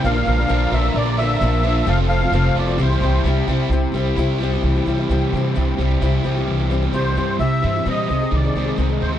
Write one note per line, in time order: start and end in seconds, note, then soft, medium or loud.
0.00 0.47 D3 medium
0.00 2.74 F4 medium
0.00 1.84 D5 medium
0.00 1.83 A#5 medium
0.04 0.24 A#1 loud
0.04 0.15 A#2 medium
0.04 0.16 F3 medium
0.04 0.16 A#3 medium
0.04 0.15 D4 medium
0.04 0.50 F4 medium
0.04 0.13 A#4 medium
0.04 0.74 F5 loud
0.14 0.26 A#3 soft
0.14 0.27 D4 soft
0.14 0.26 A#4 medium
0.26 0.47 A#1 loud
0.26 0.37 F3 medium
0.26 0.38 A#3 medium
0.26 0.38 D4 medium
0.26 0.37 A#4 medium
0.38 0.48 A#3 medium
0.38 0.49 D4 medium
0.38 0.49 A#4 medium
0.48 0.69 A#1 medium
0.48 0.71 A#2 medium
0.48 0.94 D3 medium
0.48 0.71 F3 medium
0.48 0.72 A#3 medium
0.48 0.72 D4 loud
0.48 0.70 F4 medium
0.48 0.73 A#4 loud
0.71 0.91 A#1 medium
0.71 0.84 F3 medium
0.71 0.84 A#3 medium
0.71 0.85 D4 medium
0.71 0.95 F4 medium
0.71 0.96 E5 medium
0.76 0.84 A#4 medium
0.85 1.07 A#3 soft
0.85 1.05 D4 soft
0.85 1.04 A#4 medium
0.94 1.34 A#1 medium
0.94 1.40 A#2 loud
0.94 1.41 D3 loud
0.94 1.18 A#3 loud
0.94 1.17 D4 loud
0.94 1.16 F4 loud
0.94 1.19 D5 loud
1.05 1.18 A#3 soft
1.05 1.18 D4 soft
1.05 1.17 A#4 medium
1.17 1.41 F3 medium
1.17 1.41 A#3 medium
1.17 1.62 F4 medium
1.17 1.89 E5 loud
1.21 1.42 D4 medium
1.21 1.42 A#4 medium
1.41 1.80 A#1 loud
1.41 1.64 A#2 medium
1.41 1.63 F3 medium
1.41 1.63 A#3 medium
1.41 1.64 D4 medium
1.41 1.65 A#4 medium
1.63 1.86 F3 medium
1.63 1.87 A#3 medium
1.63 1.87 D4 medium
1.63 1.85 F4 medium
1.68 1.88 A#4 medium
1.84 2.26 F1 loud
1.84 1.97 F2 medium
1.84 1.98 C3 medium
1.84 1.98 F3 medium
1.84 1.98 A3 medium
1.84 1.98 C4 medium
1.84 3.68 C5 medium
1.84 2.76 A5 medium
1.88 2.32 F4 medium
1.88 1.96 A4 medium
1.88 1.99 F5 medium
1.98 2.07 F3 soft
1.98 2.08 A3 soft
1.98 2.09 C4 soft
1.98 2.09 A4 medium
2.08 2.20 F3 medium
2.08 2.21 A3 medium
2.08 2.21 C4 medium
2.08 2.20 A4 medium
2.08 2.57 F5 loud
2.21 2.32 F3 soft
2.21 2.33 A3 soft
2.21 2.33 C4 medium
2.21 2.32 A4 soft
2.31 2.51 F1 medium
2.31 2.55 F2 medium
2.31 2.56 C3 medium
2.31 2.56 F3 medium
2.31 2.56 A3 medium
2.31 2.56 C4 medium
2.31 2.53 F4 medium
2.31 2.56 A4 medium
2.54 2.75 F1 medium
2.54 2.68 F3 medium
2.54 2.77 C4 medium
2.54 2.76 F4 medium
2.54 2.80 D5 medium
2.58 2.68 A3 medium
2.58 2.67 C4 medium
2.58 2.65 A4 medium
2.66 2.79 F3 soft
2.66 2.79 A3 medium
2.66 2.78 C4 medium
2.66 2.78 A4 medium
2.77 2.98 C2 loud
2.77 2.90 C3 medium
2.77 3.24 E3 medium
2.77 2.90 G3 medium
2.77 2.90 C4 medium
2.77 3.69 E4 medium
2.77 2.90 E4 medium
2.77 2.89 G4 medium
2.77 3.69 G5 medium
2.82 3.23 C5 medium
2.90 3.01 C4 soft
2.90 3.02 E4 soft
2.90 3.01 G4 soft
3.01 3.21 C2 medium
3.01 3.24 G3 medium
3.01 3.25 C4 medium
3.01 3.26 E4 medium
3.05 3.26 G4 medium
3.24 3.44 C2 loud
3.24 3.48 C3 medium
3.24 3.47 G3 medium
3.24 3.48 C4 medium
3.24 3.48 E4 medium
3.24 3.49 G4 medium
3.47 3.67 C2 medium
3.47 3.70 G3 medium
3.47 3.71 C4 medium
3.47 3.72 E4 medium
3.47 3.72 G4 medium
3.69 3.90 C2 medium
3.69 3.94 C3 medium
3.69 3.92 G3 medium
3.69 3.94 C4 medium
3.69 7.36 E4 medium
3.69 3.94 E4 medium
3.69 7.35 C5 medium
3.69 7.35 G5 medium
3.73 3.95 G4 medium
3.92 4.13 C2 medium
3.92 4.16 G3 medium
3.92 4.17 C4 medium
3.92 4.17 E4 medium
3.98 4.18 G4 medium
4.16 4.57 C2 medium
4.16 4.39 C3 medium
4.16 4.39 G3 medium
4.16 4.40 C4 medium
4.16 4.41 E4 loud
4.16 4.41 G4 loud
4.40 4.51 G3 medium
4.40 4.52 C4 medium
4.40 4.53 E4 medium
4.40 4.51 G4 medium
4.52 4.76 C4 medium
4.52 4.75 E4 medium
4.52 4.74 G4 medium
4.63 4.83 C2 medium
4.63 5.31 E3 medium
4.76 4.86 C4 soft
4.76 4.87 E4 soft
4.76 4.86 G4 medium
4.86 5.06 C2 medium
4.86 4.97 G3 medium
4.86 4.98 C4 medium
4.86 4.98 E4 medium
4.86 4.96 G4 medium
4.97 5.10 C4 soft
4.97 5.10 E4 soft
4.97 5.09 G4 medium
5.10 5.29 C2 loud
5.10 5.32 C3 medium
5.10 5.32 G3 medium
5.10 5.33 C4 medium
5.10 5.33 E4 medium
5.10 5.33 G4 medium
5.32 5.53 C3 medium
5.32 6.46 E3 medium
5.32 5.55 G3 medium
5.32 5.55 C4 medium
5.32 5.56 E4 medium
5.37 5.56 G4 medium
5.55 5.76 C2 medium
5.55 5.78 C3 medium
5.55 5.77 G3 medium
5.55 5.78 C4 medium
5.55 5.79 E4 medium
5.55 5.79 G4 medium
5.78 5.99 C2 medium
5.78 6.01 G3 medium
5.78 6.01 C4 medium
5.78 6.02 E4 medium
5.78 6.03 G4 medium
6.01 6.22 C2 medium
6.01 6.24 C3 medium
6.01 6.23 G3 medium
6.01 6.24 C4 medium
6.01 6.24 E4 loud
6.01 6.26 G4 loud
6.24 6.45 C2 medium
6.24 6.35 G3 medium
6.24 6.36 C4 medium
6.24 6.36 E4 medium
6.24 6.35 G4 medium
6.36 6.61 C4 medium
6.36 6.59 E4 medium
6.36 6.57 G4 medium
6.47 6.88 C2 medium
6.47 7.15 E3 medium
6.59 6.70 C4 soft
6.59 6.71 E4 medium
6.59 6.70 G4 medium
6.70 6.81 G3 medium
6.70 6.82 C4 medium
6.70 6.82 E4 medium
6.70 6.81 G4 medium
6.82 6.93 C4 soft
6.82 6.93 E4 soft
6.82 6.93 G4 medium
6.93 7.13 C2 medium
6.93 7.16 C3 medium
6.93 7.14 G3 medium
6.93 7.16 C4 medium
6.93 7.16 E4 medium
6.93 7.17 G4 medium
6.93 7.36 C5 medium
7.16 7.37 G2 medium
7.16 7.39 E3 medium
7.16 7.39 G3 medium
7.16 7.39 C4 medium
7.16 7.40 E4 medium
7.16 7.41 G4 medium
7.39 7.60 C2 medium
7.39 7.63 C3 medium
7.39 7.60 G3 medium
7.39 7.62 C4 medium
7.39 7.63 E4 medium
7.39 7.64 G4 medium
7.39 7.87 E5 loud
7.62 7.84 G2 loud
7.62 8.09 E3 medium
7.62 7.74 G3 medium
7.62 7.74 C4 medium
7.62 7.75 E4 medium
7.62 7.73 G4 medium
7.75 7.86 C4 soft
7.75 7.86 E4 soft
7.75 7.86 G4 soft
7.86 8.07 A#2 medium
7.86 8.09 C3 medium
7.86 8.09 G3 medium
7.86 8.10 C4 medium
7.86 8.10 E4 medium
7.86 8.10 G4 medium
7.90 8.35 D#5 medium
8.08 8.30 C2 medium
8.08 9.19 C3 medium
8.08 8.20 D#3 medium
8.08 8.21 G#3 medium
8.08 8.21 C4 medium
8.08 8.20 G#4 medium
8.21 8.45 G#3 soft
8.21 8.44 C4 soft
8.21 8.42 G#4 medium
8.31 8.53 C2 medium
8.31 8.77 D#3 medium
8.35 8.77 D5 medium
8.44 8.55 G#3 soft
8.44 8.56 C4 soft
8.44 8.55 G#4 soft
8.55 8.76 C2 medium
8.55 8.67 D#3 medium
8.55 8.67 G#3 medium
8.55 8.66 C4 medium
8.55 8.64 G#4 medium
8.66 8.77 G#3 soft
8.66 8.78 C4 soft
8.66 8.78 G#4 soft
8.77 8.99 C2 medium
8.77 8.89 C3 medium
8.77 8.89 D#3 medium
8.77 8.90 G#3 medium
8.77 8.89 C4 medium
8.77 8.88 G#4 medium
8.89 9.14 G#3 soft
8.89 9.12 C4 soft
8.89 9.11 G#4 medium
9.01 9.19 D2 medium
9.01 9.19 C4 medium
9.01 9.11 C5 medium
9.12 9.19 G#3 soft
9.12 9.19 C4 soft
9.12 9.19 G#4 soft